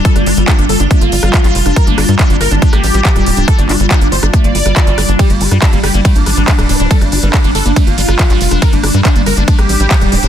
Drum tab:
RD |----------------|----------------|----------------|x---x---x---x---|
HH |xxoxxxoxxxoxxxox|xxoxxxoxxxoxxxox|xxoxxxoxxxoxxxox|xxoxxxoxxxoxxxox|
CP |----x-------xx--|----x-------x---|--x-x-------xx--|----x-------x---|
SD |-r--r---r--r---r|--r---r--r---r--|r---r--r---r--r-|---r--r---r--r--|
BD |o---o---o---o---|o---o---o---o---|o---o---o---o---|o---o---o---o---|

RD |x---x---x---x---|x---x---x---x---|
HH |xxoxxxoxxxoxxxox|xxo-xxoxxxoxxxox|
CP |----x-------xx--|----x-------x---|
SD |-r--r---r--r---r|--r---r--r---r--|
BD |o---o---o---o---|o---o---o---o---|